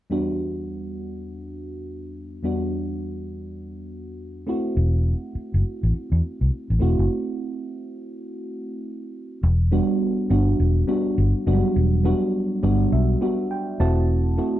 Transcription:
0.10 E2 G3 B3 D4 F#4
2.43 E2 G3 B3 D4 F#4
4.47 A3 C4 E4 F#4
4.77 E1
5.35 muted fingered electric bass stroke
5.54 F#1
5.83 A1
5.93 muted fingered electric bass stroke
6.12 E2
6.41 C2
6.70 A1
6.79 E1 A3 C4 E4 F#4
6.99 F#1
9.43 E1
9.72 G3 B3 D4 F#4
10.30 G1 G3 B3 D4 F#4
10.60 E1
10.87 G3 B3 D4 F#4
11.18 G1
11.46 F#1 F#3 B3 D4 F#4
11.53 G3
11.76 E1
12.04 G3 B3 D4 F#4
12.63 G1 G3 B3 D4 F#4 D5
12.92 B1 E5
13.21 G3 B3 D4 F#4
13.51 G5
13.80 E1 A3 C4 E4 F#4 A5
14.37 A3 C4 E4 F#4

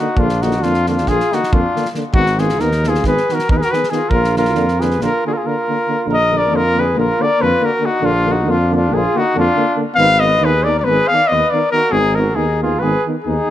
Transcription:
Already playing: F#4
0.00 A#3 D#4
0.16 A#1 D3 A#3 D4 F4, kick
0.29 snare
0.41 D3 A#3 D#4 F#4, snare
0.51 snare
0.61 F2 D3 A#3 D4 F4, snare
0.74 snare
0.86 D3 A#3 D4 F4, snare
0.98 snare
1.06 A#1 D3 A#3 F4 G#4, kick, snare
1.20 snare
1.31 D3 A#3 D#4 F#4, snare
1.43 snare
1.51 F2 D3 A#3 D4 F4, kick
1.75 D3 A#3, snare
1.85 snare
1.95 D3 A#3, snare
2.13 G#1 D#3 B3 D#4 F#4, kick
2.26 snare
2.38 D#3 B3 F4 G#4, snare
2.49 snare
2.57 D#2 D#3 B3 D#4 A#4, snare
2.72 snare
2.82 D#3 B3, snare
2.88 F4 G#4
2.95 snare
3.02 G#1 D#3, kick, snare
3.06 B3 G#4 B4
3.17 snare
3.29 D#3 B3 F#4, snare
3.34 A#4
3.39 snare
3.49 D#2 D#3 B3 D#4 A#4, kick
3.57 G#4 B4
3.61 F#4 A#4, snare
3.71 D#3 B3 G#4 B4, snare
3.84 snare
3.90 D#3 B3 G#4, snare
3.95 F4
4.09 A#1 D3 A#3 F4 A#4, kick
4.24 snare
4.36 D3 A#3 F4 A#4, snare
4.45 snare
4.54 F2 D3 A#3, snare
4.68 snare
4.80 D3 A#3 G#4 B4, snare
4.91 snare
5.00 A#1 D3 A#3 F4 A#4, snare
5.25 D3 A#3 F4 G#4
5.29 F4 F#4 A#4
5.37 G#4
5.43 D3 A#3 F4 A#4
5.69 D3 A#3
5.88 D3 A#3
6.06 A#1 D3 A#3 A#4
6.13 D#5
6.30 D3 A#3
6.37 A#4 D5
6.49 F2 D3 A#3
6.55 F4 A#4
6.73 D3 A#3
6.79 G#4 B4
6.95 A#1 D3 A#3 F4
6.99 A#4
7.19 D3 A#3 D5
7.25 A#4
7.39 F2 D3 A#3 B4
7.44 F4
7.61 D3 A#3
7.65 F#4 A#4
7.79 D3 A#3
7.85 D#4 F#4
8.01 A#1 D3 A#3 D4
8.05 F4
8.25 D3 A#3
8.31 D#4 F#4
8.46 F2 D3 A#3
8.50 D4 F4
8.71 D3 A#3 F4
8.77 D4
8.90 A#1 D3 A#3 G#4
8.97 F4
9.15 D3 A#3 F#4
9.20 D#4
9.35 F2 D3 A#3 D4
9.39 F4
9.56 D3 A#3
9.76 D3 A#3
9.94 G#1 D#3 B3 F5
9.99 B4
10.19 D#3 B3 D#5
10.25 B4
10.41 D#2 D#3 B3 B4
10.46 G#4
10.63 D#3 B3 D5
10.70 A#4
10.79 A#4 D5
10.84 G#1 D#3 B3 B4
10.90 G#4
11.07 B3 F5
11.12 D#3 D5
11.27 B3 D#5
11.31 D#2 D#3 B4
11.50 D#3 B3 D5
11.54 A#4
11.71 D#3 B3 F#4 A#4
11.91 G#1 D#3 B3 G#4
11.97 D#4
12.15 D#3 B3 A#4
12.20 F#4
12.35 D#2 D#3 B3 D#4 G#4
12.62 D#3 B3 F4 G#4
12.79 G#1 D#3 B3 G#4 B4
13.06 D#3 B3
13.24 D#2 D#3 B3 D#4 G#4

